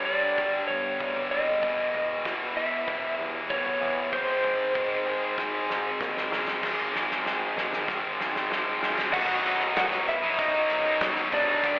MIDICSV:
0, 0, Header, 1, 7, 480
1, 0, Start_track
1, 0, Tempo, 625000
1, 1250, Time_signature, 4, 2, 24, 8
1, 9055, End_track
2, 0, Start_track
2, 0, Title_t, "Lead electric guitar"
2, 0, Program_c, 0, 29
2, 39, Note_on_c, 0, 74, 84
2, 515, Note_off_c, 0, 74, 0
2, 518, Note_on_c, 0, 73, 66
2, 1008, Note_on_c, 0, 75, 80
2, 1018, Note_off_c, 0, 73, 0
2, 1697, Note_off_c, 0, 75, 0
2, 1972, Note_on_c, 0, 76, 93
2, 2419, Note_off_c, 0, 76, 0
2, 2689, Note_on_c, 0, 73, 97
2, 3168, Note_off_c, 0, 73, 0
2, 3171, Note_on_c, 0, 72, 91
2, 4579, Note_off_c, 0, 72, 0
2, 7012, Note_on_c, 0, 78, 90
2, 7013, Note_on_c, 0, 66, 80
2, 7461, Note_off_c, 0, 66, 0
2, 7496, Note_off_c, 0, 78, 0
2, 7505, Note_on_c, 0, 66, 74
2, 7506, Note_on_c, 0, 78, 87
2, 7567, Note_off_c, 0, 78, 0
2, 7569, Note_off_c, 0, 66, 0
2, 7746, Note_on_c, 0, 76, 104
2, 7750, Note_on_c, 0, 64, 73
2, 7963, Note_off_c, 0, 64, 0
2, 7975, Note_off_c, 0, 76, 0
2, 7978, Note_on_c, 0, 75, 94
2, 7982, Note_on_c, 0, 63, 81
2, 8664, Note_off_c, 0, 63, 0
2, 8704, Note_on_c, 0, 62, 80
2, 8706, Note_on_c, 0, 74, 93
2, 8715, Note_off_c, 0, 75, 0
2, 9055, Note_off_c, 0, 62, 0
2, 9055, Note_off_c, 0, 74, 0
2, 9055, End_track
3, 0, Start_track
3, 0, Title_t, "Clean electric guitar"
3, 0, Program_c, 1, 27
3, 0, Note_on_c, 1, 43, 62
3, 0, Note_on_c, 1, 55, 62
3, 0, Note_on_c, 1, 62, 59
3, 52, Note_on_c, 1, 67, 65
3, 532, Note_off_c, 1, 43, 0
3, 533, Note_on_c, 1, 59, 62
3, 772, Note_off_c, 1, 55, 0
3, 1009, Note_off_c, 1, 62, 0
3, 1012, Note_on_c, 1, 55, 67
3, 1250, Note_off_c, 1, 67, 0
3, 1250, Note_on_c, 1, 40, 67
3, 1251, Note_off_c, 1, 55, 0
3, 1251, Note_off_c, 1, 59, 0
3, 1485, Note_on_c, 1, 52, 65
3, 1729, Note_on_c, 1, 59, 62
3, 1967, Note_on_c, 1, 64, 68
3, 2196, Note_off_c, 1, 59, 0
3, 2205, Note_on_c, 1, 59, 64
3, 2444, Note_on_c, 1, 55, 67
3, 2448, Note_off_c, 1, 40, 0
3, 2679, Note_off_c, 1, 59, 0
3, 2686, Note_off_c, 1, 52, 0
3, 2688, Note_on_c, 1, 59, 68
3, 2931, Note_on_c, 1, 52, 69
3, 3165, Note_off_c, 1, 55, 0
3, 3167, Note_off_c, 1, 64, 0
3, 3167, Note_on_c, 1, 44, 68
3, 3168, Note_off_c, 1, 59, 0
3, 3169, Note_off_c, 1, 52, 0
3, 3409, Note_on_c, 1, 56, 67
3, 3648, Note_on_c, 1, 63, 64
3, 3888, Note_on_c, 1, 68, 67
3, 4117, Note_off_c, 1, 63, 0
3, 4127, Note_on_c, 1, 63, 64
3, 4367, Note_off_c, 1, 44, 0
3, 4369, Note_on_c, 1, 60, 69
3, 4597, Note_off_c, 1, 63, 0
3, 4607, Note_on_c, 1, 63, 60
3, 4608, Note_off_c, 1, 56, 0
3, 4845, Note_on_c, 1, 56, 64
3, 5087, Note_off_c, 1, 56, 0
3, 5087, Note_off_c, 1, 63, 0
3, 5088, Note_off_c, 1, 68, 0
3, 5089, Note_off_c, 1, 60, 0
3, 9055, End_track
4, 0, Start_track
4, 0, Title_t, "Distorted electric guitar"
4, 0, Program_c, 2, 30
4, 58, Note_on_c, 2, 43, 79
4, 68, Note_on_c, 2, 50, 79
4, 71, Note_on_c, 2, 55, 88
4, 287, Note_off_c, 2, 43, 0
4, 294, Note_off_c, 2, 50, 0
4, 296, Note_on_c, 2, 43, 82
4, 297, Note_off_c, 2, 55, 0
4, 303, Note_on_c, 2, 50, 107
4, 306, Note_on_c, 2, 55, 101
4, 761, Note_off_c, 2, 43, 0
4, 766, Note_off_c, 2, 50, 0
4, 770, Note_on_c, 2, 43, 74
4, 772, Note_off_c, 2, 55, 0
4, 775, Note_on_c, 2, 50, 78
4, 782, Note_on_c, 2, 55, 86
4, 998, Note_off_c, 2, 43, 0
4, 1004, Note_off_c, 2, 50, 0
4, 1008, Note_on_c, 2, 43, 81
4, 1010, Note_off_c, 2, 55, 0
4, 1013, Note_on_c, 2, 50, 84
4, 1019, Note_on_c, 2, 55, 84
4, 1234, Note_off_c, 2, 43, 0
4, 1237, Note_off_c, 2, 50, 0
4, 1240, Note_off_c, 2, 55, 0
4, 1250, Note_on_c, 2, 40, 88
4, 1257, Note_on_c, 2, 47, 83
4, 1261, Note_on_c, 2, 52, 105
4, 1719, Note_off_c, 2, 40, 0
4, 1723, Note_off_c, 2, 47, 0
4, 1728, Note_on_c, 2, 40, 80
4, 1731, Note_off_c, 2, 52, 0
4, 1733, Note_on_c, 2, 47, 81
4, 1740, Note_on_c, 2, 52, 88
4, 1960, Note_off_c, 2, 40, 0
4, 1966, Note_off_c, 2, 47, 0
4, 1970, Note_on_c, 2, 40, 75
4, 1974, Note_off_c, 2, 52, 0
4, 1975, Note_on_c, 2, 47, 74
4, 1983, Note_on_c, 2, 52, 76
4, 2193, Note_off_c, 2, 40, 0
4, 2200, Note_off_c, 2, 47, 0
4, 2202, Note_on_c, 2, 40, 91
4, 2206, Note_off_c, 2, 52, 0
4, 2210, Note_on_c, 2, 47, 104
4, 2215, Note_on_c, 2, 52, 107
4, 2681, Note_off_c, 2, 40, 0
4, 2688, Note_off_c, 2, 47, 0
4, 2691, Note_on_c, 2, 40, 78
4, 2692, Note_off_c, 2, 52, 0
4, 2697, Note_on_c, 2, 47, 91
4, 2702, Note_on_c, 2, 52, 83
4, 2910, Note_off_c, 2, 40, 0
4, 2913, Note_off_c, 2, 47, 0
4, 2919, Note_on_c, 2, 40, 73
4, 2922, Note_on_c, 2, 47, 81
4, 2923, Note_off_c, 2, 52, 0
4, 2933, Note_on_c, 2, 52, 82
4, 3149, Note_off_c, 2, 40, 0
4, 3150, Note_off_c, 2, 47, 0
4, 3156, Note_off_c, 2, 52, 0
4, 3162, Note_on_c, 2, 44, 90
4, 3170, Note_on_c, 2, 51, 85
4, 3171, Note_on_c, 2, 56, 98
4, 3630, Note_off_c, 2, 44, 0
4, 3633, Note_off_c, 2, 51, 0
4, 3639, Note_on_c, 2, 44, 73
4, 3640, Note_off_c, 2, 56, 0
4, 3643, Note_on_c, 2, 51, 85
4, 3649, Note_on_c, 2, 56, 91
4, 3873, Note_off_c, 2, 44, 0
4, 3879, Note_off_c, 2, 51, 0
4, 3882, Note_on_c, 2, 44, 80
4, 3888, Note_off_c, 2, 56, 0
4, 3888, Note_on_c, 2, 51, 85
4, 3897, Note_on_c, 2, 56, 94
4, 4118, Note_off_c, 2, 44, 0
4, 4125, Note_off_c, 2, 51, 0
4, 4127, Note_on_c, 2, 44, 91
4, 4130, Note_off_c, 2, 56, 0
4, 4135, Note_on_c, 2, 51, 102
4, 4140, Note_on_c, 2, 56, 110
4, 4604, Note_off_c, 2, 44, 0
4, 4609, Note_off_c, 2, 51, 0
4, 4613, Note_on_c, 2, 44, 71
4, 4616, Note_off_c, 2, 56, 0
4, 4619, Note_on_c, 2, 51, 86
4, 4625, Note_on_c, 2, 56, 79
4, 4840, Note_off_c, 2, 44, 0
4, 4850, Note_off_c, 2, 51, 0
4, 4850, Note_on_c, 2, 44, 78
4, 4853, Note_off_c, 2, 56, 0
4, 4859, Note_on_c, 2, 51, 84
4, 4863, Note_on_c, 2, 56, 89
4, 5075, Note_off_c, 2, 44, 0
4, 5079, Note_off_c, 2, 51, 0
4, 5081, Note_off_c, 2, 56, 0
4, 5091, Note_on_c, 2, 44, 96
4, 5095, Note_on_c, 2, 51, 90
4, 5104, Note_on_c, 2, 56, 102
4, 5315, Note_off_c, 2, 44, 0
4, 5323, Note_off_c, 2, 51, 0
4, 5324, Note_on_c, 2, 44, 82
4, 5327, Note_off_c, 2, 56, 0
4, 5332, Note_on_c, 2, 51, 80
4, 5336, Note_on_c, 2, 56, 87
4, 5554, Note_off_c, 2, 44, 0
4, 5564, Note_off_c, 2, 51, 0
4, 5564, Note_on_c, 2, 44, 89
4, 5567, Note_off_c, 2, 56, 0
4, 5573, Note_on_c, 2, 51, 98
4, 5576, Note_on_c, 2, 56, 93
4, 5803, Note_off_c, 2, 44, 0
4, 5806, Note_off_c, 2, 51, 0
4, 5811, Note_off_c, 2, 56, 0
4, 5812, Note_on_c, 2, 44, 74
4, 5816, Note_on_c, 2, 51, 77
4, 5820, Note_on_c, 2, 56, 82
4, 6045, Note_off_c, 2, 44, 0
4, 6053, Note_off_c, 2, 51, 0
4, 6054, Note_on_c, 2, 44, 100
4, 6059, Note_off_c, 2, 56, 0
4, 6062, Note_on_c, 2, 51, 101
4, 6068, Note_on_c, 2, 56, 98
4, 6278, Note_off_c, 2, 44, 0
4, 6283, Note_off_c, 2, 51, 0
4, 6287, Note_on_c, 2, 44, 72
4, 6289, Note_off_c, 2, 56, 0
4, 6292, Note_on_c, 2, 51, 85
4, 6298, Note_on_c, 2, 56, 82
4, 6521, Note_off_c, 2, 44, 0
4, 6529, Note_off_c, 2, 51, 0
4, 6531, Note_on_c, 2, 44, 83
4, 6533, Note_off_c, 2, 56, 0
4, 6538, Note_on_c, 2, 51, 92
4, 6543, Note_on_c, 2, 56, 101
4, 6758, Note_off_c, 2, 44, 0
4, 6766, Note_off_c, 2, 51, 0
4, 6768, Note_on_c, 2, 44, 85
4, 6771, Note_off_c, 2, 56, 0
4, 6775, Note_on_c, 2, 51, 80
4, 6780, Note_on_c, 2, 56, 94
4, 6994, Note_off_c, 2, 44, 0
4, 6998, Note_off_c, 2, 51, 0
4, 7000, Note_off_c, 2, 56, 0
4, 7004, Note_on_c, 2, 35, 92
4, 7013, Note_on_c, 2, 42, 96
4, 7017, Note_on_c, 2, 47, 88
4, 7024, Note_on_c, 2, 54, 108
4, 7031, Note_on_c, 2, 63, 106
4, 7239, Note_off_c, 2, 42, 0
4, 7246, Note_off_c, 2, 47, 0
4, 7249, Note_on_c, 2, 42, 82
4, 7255, Note_on_c, 2, 47, 85
4, 7259, Note_off_c, 2, 54, 0
4, 7266, Note_off_c, 2, 63, 0
4, 7268, Note_on_c, 2, 54, 92
4, 7275, Note_on_c, 2, 63, 91
4, 7478, Note_off_c, 2, 35, 0
4, 7484, Note_off_c, 2, 42, 0
4, 7487, Note_on_c, 2, 35, 98
4, 7492, Note_off_c, 2, 47, 0
4, 7494, Note_on_c, 2, 42, 96
4, 7498, Note_off_c, 2, 54, 0
4, 7501, Note_on_c, 2, 47, 102
4, 7505, Note_off_c, 2, 63, 0
4, 7507, Note_on_c, 2, 54, 106
4, 7514, Note_on_c, 2, 63, 109
4, 7602, Note_off_c, 2, 63, 0
4, 7611, Note_on_c, 2, 63, 77
4, 7616, Note_off_c, 2, 54, 0
4, 7625, Note_on_c, 2, 54, 64
4, 7628, Note_off_c, 2, 47, 0
4, 7638, Note_on_c, 2, 47, 60
4, 7726, Note_off_c, 2, 42, 0
4, 7726, Note_off_c, 2, 47, 0
4, 7726, Note_off_c, 2, 54, 0
4, 7731, Note_off_c, 2, 63, 0
4, 7848, Note_off_c, 2, 35, 0
4, 7849, Note_on_c, 2, 63, 75
4, 7864, Note_on_c, 2, 54, 62
4, 7878, Note_on_c, 2, 47, 60
4, 8081, Note_off_c, 2, 63, 0
4, 8090, Note_on_c, 2, 63, 75
4, 8100, Note_off_c, 2, 54, 0
4, 8109, Note_on_c, 2, 54, 60
4, 8110, Note_off_c, 2, 47, 0
4, 8120, Note_on_c, 2, 47, 65
4, 8215, Note_on_c, 2, 42, 67
4, 8216, Note_off_c, 2, 47, 0
4, 8225, Note_on_c, 2, 47, 77
4, 8228, Note_off_c, 2, 54, 0
4, 8234, Note_off_c, 2, 63, 0
4, 8237, Note_on_c, 2, 54, 89
4, 8244, Note_on_c, 2, 63, 76
4, 8322, Note_off_c, 2, 63, 0
4, 8332, Note_on_c, 2, 63, 74
4, 8337, Note_off_c, 2, 54, 0
4, 8346, Note_on_c, 2, 54, 65
4, 8348, Note_off_c, 2, 47, 0
4, 8358, Note_on_c, 2, 47, 66
4, 8451, Note_off_c, 2, 42, 0
4, 8453, Note_off_c, 2, 47, 0
4, 8453, Note_on_c, 2, 35, 91
4, 8460, Note_on_c, 2, 42, 91
4, 8462, Note_off_c, 2, 54, 0
4, 8462, Note_on_c, 2, 47, 97
4, 8468, Note_off_c, 2, 63, 0
4, 8471, Note_on_c, 2, 54, 98
4, 8477, Note_on_c, 2, 63, 95
4, 8684, Note_off_c, 2, 42, 0
4, 8693, Note_off_c, 2, 47, 0
4, 8693, Note_on_c, 2, 42, 75
4, 8699, Note_off_c, 2, 54, 0
4, 8702, Note_on_c, 2, 47, 79
4, 8709, Note_on_c, 2, 54, 85
4, 8710, Note_off_c, 2, 63, 0
4, 8720, Note_on_c, 2, 63, 95
4, 8804, Note_off_c, 2, 63, 0
4, 8813, Note_on_c, 2, 63, 74
4, 8814, Note_off_c, 2, 54, 0
4, 8823, Note_on_c, 2, 54, 69
4, 8832, Note_off_c, 2, 47, 0
4, 8841, Note_on_c, 2, 47, 62
4, 8916, Note_off_c, 2, 35, 0
4, 8916, Note_off_c, 2, 42, 0
4, 8916, Note_off_c, 2, 63, 0
4, 8921, Note_off_c, 2, 54, 0
4, 8930, Note_off_c, 2, 47, 0
4, 8931, Note_on_c, 2, 43, 100
4, 8937, Note_on_c, 2, 50, 104
4, 8944, Note_on_c, 2, 55, 98
4, 8950, Note_on_c, 2, 59, 106
4, 8957, Note_on_c, 2, 62, 105
4, 8958, Note_on_c, 2, 67, 108
4, 9055, Note_off_c, 2, 43, 0
4, 9055, Note_off_c, 2, 50, 0
4, 9055, Note_off_c, 2, 55, 0
4, 9055, Note_off_c, 2, 59, 0
4, 9055, Note_off_c, 2, 62, 0
4, 9055, Note_off_c, 2, 67, 0
4, 9055, End_track
5, 0, Start_track
5, 0, Title_t, "Picked electric bass"
5, 0, Program_c, 3, 34
5, 0, Note_on_c, 3, 31, 83
5, 106, Note_off_c, 3, 31, 0
5, 291, Note_on_c, 3, 31, 81
5, 438, Note_off_c, 3, 31, 0
5, 536, Note_on_c, 3, 43, 81
5, 681, Note_off_c, 3, 43, 0
5, 770, Note_on_c, 3, 38, 83
5, 917, Note_off_c, 3, 38, 0
5, 1015, Note_on_c, 3, 26, 86
5, 1160, Note_off_c, 3, 26, 0
5, 1252, Note_on_c, 3, 28, 97
5, 1397, Note_off_c, 3, 28, 0
5, 1489, Note_on_c, 3, 28, 73
5, 1636, Note_off_c, 3, 28, 0
5, 1730, Note_on_c, 3, 28, 78
5, 2023, Note_off_c, 3, 28, 0
5, 2212, Note_on_c, 3, 28, 89
5, 2357, Note_off_c, 3, 28, 0
5, 2449, Note_on_c, 3, 40, 81
5, 2596, Note_off_c, 3, 40, 0
5, 2693, Note_on_c, 3, 35, 81
5, 2838, Note_off_c, 3, 35, 0
5, 2926, Note_on_c, 3, 40, 90
5, 3073, Note_off_c, 3, 40, 0
5, 3173, Note_on_c, 3, 32, 90
5, 3318, Note_off_c, 3, 32, 0
5, 3410, Note_on_c, 3, 32, 70
5, 3556, Note_off_c, 3, 32, 0
5, 3651, Note_on_c, 3, 32, 80
5, 3943, Note_off_c, 3, 32, 0
5, 4133, Note_on_c, 3, 32, 82
5, 4278, Note_off_c, 3, 32, 0
5, 4373, Note_on_c, 3, 44, 83
5, 4518, Note_off_c, 3, 44, 0
5, 4611, Note_on_c, 3, 39, 89
5, 4757, Note_off_c, 3, 39, 0
5, 4843, Note_on_c, 3, 44, 89
5, 4992, Note_off_c, 3, 44, 0
5, 5093, Note_on_c, 3, 32, 94
5, 5239, Note_off_c, 3, 32, 0
5, 5329, Note_on_c, 3, 32, 79
5, 5476, Note_off_c, 3, 32, 0
5, 5567, Note_on_c, 3, 32, 82
5, 5714, Note_off_c, 3, 32, 0
5, 5806, Note_on_c, 3, 39, 80
5, 5954, Note_off_c, 3, 39, 0
5, 6055, Note_on_c, 3, 32, 95
5, 6348, Note_off_c, 3, 32, 0
5, 6532, Note_on_c, 3, 32, 81
5, 6679, Note_off_c, 3, 32, 0
5, 6781, Note_on_c, 3, 32, 91
5, 6924, Note_off_c, 3, 32, 0
5, 7019, Note_on_c, 3, 23, 101
5, 7189, Note_off_c, 3, 23, 0
5, 7261, Note_on_c, 3, 23, 81
5, 7430, Note_off_c, 3, 23, 0
5, 7493, Note_on_c, 3, 23, 96
5, 7839, Note_off_c, 3, 23, 0
5, 7982, Note_on_c, 3, 23, 98
5, 8151, Note_off_c, 3, 23, 0
5, 8219, Note_on_c, 3, 23, 92
5, 8389, Note_off_c, 3, 23, 0
5, 8456, Note_on_c, 3, 30, 93
5, 8627, Note_off_c, 3, 30, 0
5, 8700, Note_on_c, 3, 23, 94
5, 8869, Note_off_c, 3, 23, 0
5, 8937, Note_on_c, 3, 31, 105
5, 9055, Note_off_c, 3, 31, 0
5, 9055, End_track
6, 0, Start_track
6, 0, Title_t, "Muted distorted electric guitar strokes"
6, 7735, Note_on_c, 9, 29, 54
6, 7812, Note_off_c, 9, 29, 0
6, 9055, End_track
7, 0, Start_track
7, 0, Title_t, "Drums"
7, 291, Note_on_c, 9, 43, 83
7, 293, Note_on_c, 9, 36, 94
7, 368, Note_off_c, 9, 43, 0
7, 370, Note_off_c, 9, 36, 0
7, 531, Note_on_c, 9, 43, 73
7, 608, Note_off_c, 9, 43, 0
7, 772, Note_on_c, 9, 36, 106
7, 848, Note_off_c, 9, 36, 0
7, 888, Note_on_c, 9, 43, 79
7, 965, Note_off_c, 9, 43, 0
7, 1250, Note_on_c, 9, 43, 80
7, 1251, Note_on_c, 9, 36, 103
7, 1327, Note_off_c, 9, 43, 0
7, 1328, Note_off_c, 9, 36, 0
7, 1492, Note_on_c, 9, 43, 77
7, 1492, Note_on_c, 9, 47, 76
7, 1569, Note_off_c, 9, 43, 0
7, 1569, Note_off_c, 9, 47, 0
7, 1731, Note_on_c, 9, 36, 106
7, 1733, Note_on_c, 9, 43, 86
7, 1736, Note_on_c, 9, 38, 74
7, 1808, Note_off_c, 9, 36, 0
7, 1810, Note_off_c, 9, 43, 0
7, 1812, Note_off_c, 9, 38, 0
7, 2210, Note_on_c, 9, 43, 81
7, 2211, Note_on_c, 9, 36, 104
7, 2286, Note_off_c, 9, 43, 0
7, 2288, Note_off_c, 9, 36, 0
7, 2452, Note_on_c, 9, 43, 70
7, 2529, Note_off_c, 9, 43, 0
7, 2690, Note_on_c, 9, 36, 108
7, 2767, Note_off_c, 9, 36, 0
7, 2810, Note_on_c, 9, 43, 77
7, 2887, Note_off_c, 9, 43, 0
7, 3168, Note_on_c, 9, 43, 84
7, 3171, Note_on_c, 9, 36, 99
7, 3245, Note_off_c, 9, 43, 0
7, 3248, Note_off_c, 9, 36, 0
7, 3411, Note_on_c, 9, 43, 79
7, 3488, Note_off_c, 9, 43, 0
7, 3650, Note_on_c, 9, 43, 91
7, 3651, Note_on_c, 9, 36, 105
7, 3727, Note_off_c, 9, 36, 0
7, 3727, Note_off_c, 9, 43, 0
7, 4132, Note_on_c, 9, 36, 104
7, 4136, Note_on_c, 9, 38, 55
7, 4208, Note_off_c, 9, 36, 0
7, 4213, Note_off_c, 9, 38, 0
7, 4379, Note_on_c, 9, 38, 62
7, 4456, Note_off_c, 9, 38, 0
7, 4613, Note_on_c, 9, 36, 105
7, 4616, Note_on_c, 9, 38, 78
7, 4690, Note_off_c, 9, 36, 0
7, 4692, Note_off_c, 9, 38, 0
7, 4740, Note_on_c, 9, 38, 70
7, 4816, Note_off_c, 9, 38, 0
7, 4857, Note_on_c, 9, 38, 87
7, 4933, Note_off_c, 9, 38, 0
7, 4974, Note_on_c, 9, 38, 83
7, 5051, Note_off_c, 9, 38, 0
7, 5094, Note_on_c, 9, 36, 109
7, 5096, Note_on_c, 9, 49, 107
7, 5098, Note_on_c, 9, 38, 61
7, 5170, Note_off_c, 9, 36, 0
7, 5173, Note_off_c, 9, 49, 0
7, 5175, Note_off_c, 9, 38, 0
7, 5341, Note_on_c, 9, 38, 61
7, 5418, Note_off_c, 9, 38, 0
7, 5461, Note_on_c, 9, 38, 60
7, 5537, Note_off_c, 9, 38, 0
7, 5578, Note_on_c, 9, 38, 76
7, 5655, Note_off_c, 9, 38, 0
7, 5818, Note_on_c, 9, 38, 73
7, 5894, Note_off_c, 9, 38, 0
7, 5935, Note_on_c, 9, 38, 65
7, 6012, Note_off_c, 9, 38, 0
7, 6054, Note_on_c, 9, 36, 109
7, 6057, Note_on_c, 9, 38, 80
7, 6131, Note_off_c, 9, 36, 0
7, 6134, Note_off_c, 9, 38, 0
7, 6302, Note_on_c, 9, 38, 79
7, 6379, Note_off_c, 9, 38, 0
7, 6420, Note_on_c, 9, 38, 72
7, 6497, Note_off_c, 9, 38, 0
7, 6542, Note_on_c, 9, 38, 95
7, 6619, Note_off_c, 9, 38, 0
7, 6779, Note_on_c, 9, 38, 94
7, 6856, Note_off_c, 9, 38, 0
7, 6899, Note_on_c, 9, 38, 82
7, 6976, Note_off_c, 9, 38, 0
7, 7016, Note_on_c, 9, 49, 123
7, 7018, Note_on_c, 9, 36, 111
7, 7093, Note_off_c, 9, 49, 0
7, 7094, Note_off_c, 9, 36, 0
7, 7265, Note_on_c, 9, 42, 75
7, 7342, Note_off_c, 9, 42, 0
7, 7381, Note_on_c, 9, 42, 52
7, 7458, Note_off_c, 9, 42, 0
7, 7500, Note_on_c, 9, 42, 116
7, 7502, Note_on_c, 9, 38, 126
7, 7577, Note_off_c, 9, 42, 0
7, 7579, Note_off_c, 9, 38, 0
7, 7619, Note_on_c, 9, 42, 54
7, 7696, Note_off_c, 9, 42, 0
7, 7742, Note_on_c, 9, 42, 79
7, 7819, Note_off_c, 9, 42, 0
7, 7978, Note_on_c, 9, 36, 116
7, 7978, Note_on_c, 9, 42, 115
7, 8054, Note_off_c, 9, 36, 0
7, 8054, Note_off_c, 9, 42, 0
7, 8099, Note_on_c, 9, 42, 44
7, 8176, Note_off_c, 9, 42, 0
7, 8217, Note_on_c, 9, 42, 73
7, 8293, Note_off_c, 9, 42, 0
7, 8456, Note_on_c, 9, 42, 109
7, 8458, Note_on_c, 9, 38, 123
7, 8533, Note_off_c, 9, 42, 0
7, 8535, Note_off_c, 9, 38, 0
7, 8576, Note_on_c, 9, 42, 47
7, 8653, Note_off_c, 9, 42, 0
7, 8697, Note_on_c, 9, 36, 81
7, 8698, Note_on_c, 9, 42, 79
7, 8773, Note_off_c, 9, 36, 0
7, 8774, Note_off_c, 9, 42, 0
7, 8937, Note_on_c, 9, 36, 110
7, 8940, Note_on_c, 9, 42, 101
7, 9014, Note_off_c, 9, 36, 0
7, 9017, Note_off_c, 9, 42, 0
7, 9055, End_track
0, 0, End_of_file